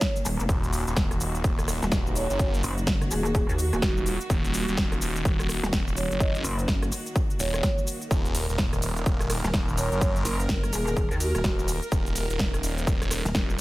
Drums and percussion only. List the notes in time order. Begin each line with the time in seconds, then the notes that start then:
0.01 kick, snare, closed hi-hat, cabasa
0.16 closed hi-hat, cabasa
0.25 open hi-hat, cabasa
0.40 closed hi-hat, cabasa
0.49 kick, closed hi-hat, cabasa
0.63 closed hi-hat, cabasa
0.73 open hi-hat, cabasa
0.87 closed hi-hat, cabasa
0.96 kick, snare, closed hi-hat, cabasa
1.11 cross-stick, closed hi-hat, cabasa
1.20 open hi-hat, cabasa
1.35 closed hi-hat, cabasa
1.44 kick, closed hi-hat, cabasa
1.59 cross-stick, closed hi-hat, cabasa
1.68 cross-stick, open hi-hat, cabasa
1.82 snare, closed hi-hat, cabasa
1.92 kick, snare, closed hi-hat, cabasa
2.07 cabasa
2.15 open hi-hat, cabasa
2.30 closed hi-hat, cabasa
2.39 kick, closed hi-hat, cabasa
2.54 closed hi-hat, cabasa
2.63 open hi-hat, cabasa
2.78 closed hi-hat, cabasa
2.87 kick, snare, closed hi-hat, cabasa
3.01 cross-stick, closed hi-hat, cabasa
3.11 open hi-hat, cabasa
3.25 closed hi-hat, cabasa
3.35 kick, closed hi-hat, cabasa
3.49 closed hi-hat, cabasa
3.58 open hi-hat, cabasa
3.73 cross-stick, closed hi-hat, cabasa
3.82 kick, snare, closed hi-hat, cabasa
3.97 cabasa
4.06 open hi-hat, cabasa
4.21 closed hi-hat, cabasa
4.30 kick, closed hi-hat, cabasa
4.44 closed hi-hat, cabasa
4.54 open hi-hat, cabasa
4.68 closed hi-hat, cabasa
4.77 kick, snare, closed hi-hat, cabasa
4.92 cross-stick, closed hi-hat, cabasa
5.01 open hi-hat, cabasa
5.16 closed hi-hat, cabasa
5.25 kick, closed hi-hat, cabasa
5.40 cross-stick, closed hi-hat, cabasa
5.49 cross-stick, open hi-hat, cabasa
5.63 snare, closed hi-hat, cabasa
5.73 kick, snare, closed hi-hat, cabasa
5.88 cabasa
5.97 open hi-hat, cabasa
6.11 closed hi-hat, cabasa
6.20 kick, closed hi-hat, cabasa
6.35 closed hi-hat, cabasa
6.44 open hi-hat, cabasa
6.59 closed hi-hat, cabasa
6.68 kick, snare, closed hi-hat, cabasa
6.83 cross-stick, closed hi-hat, cabasa
6.92 open hi-hat, cabasa
7.06 closed hi-hat, cabasa
7.16 kick, closed hi-hat, cabasa
7.30 closed hi-hat, cabasa
7.39 open hi-hat, cabasa
7.54 cross-stick, closed hi-hat, cabasa
7.63 kick, snare, closed hi-hat, cabasa
7.78 cabasa
7.87 open hi-hat, cabasa
8.02 closed hi-hat, cabasa
8.11 kick, closed hi-hat, cabasa
8.25 closed hi-hat, cabasa
8.35 open hi-hat, ride, cabasa
8.49 closed hi-hat, cabasa
8.58 kick, snare, closed hi-hat, cabasa
8.73 cross-stick, closed hi-hat, cabasa
8.82 open hi-hat, ride, cabasa
8.97 closed hi-hat, cabasa
9.06 kick, closed hi-hat, cabasa
9.20 cross-stick, closed hi-hat, cabasa
9.30 cross-stick, open hi-hat, ride, cabasa
9.44 snare, closed hi-hat, cabasa
9.54 kick, snare, closed hi-hat, cabasa
9.69 cabasa
9.77 open hi-hat, ride, cabasa
9.92 closed hi-hat, cabasa
10.01 kick, closed hi-hat, cabasa
10.16 closed hi-hat, cabasa
10.25 open hi-hat, ride, cabasa
10.40 closed hi-hat, cabasa
10.49 kick, snare, closed hi-hat, cabasa
10.63 cross-stick, closed hi-hat, cabasa
10.73 open hi-hat, ride, cabasa
10.87 closed hi-hat, cabasa
10.97 kick, closed hi-hat, cabasa
11.11 closed hi-hat, cabasa
11.20 open hi-hat, ride, cabasa
11.35 cross-stick, closed hi-hat, cabasa
11.44 kick, snare, closed hi-hat, cabasa
11.59 cabasa
11.68 open hi-hat, ride, cabasa
11.82 closed hi-hat, cabasa
11.92 kick, closed hi-hat, cabasa
12.06 closed hi-hat, cabasa
12.16 open hi-hat, ride, cabasa
12.30 closed hi-hat, cabasa
12.39 kick, snare, closed hi-hat, cabasa
12.54 cross-stick, closed hi-hat, cabasa
12.63 open hi-hat, ride, cabasa
12.78 closed hi-hat, cabasa
12.87 kick, closed hi-hat, cabasa
13.02 cross-stick, closed hi-hat, cabasa
13.11 cross-stick, open hi-hat, ride, cabasa
13.25 snare, closed hi-hat, cabasa
13.35 kick, snare, closed hi-hat, cabasa
13.50 cabasa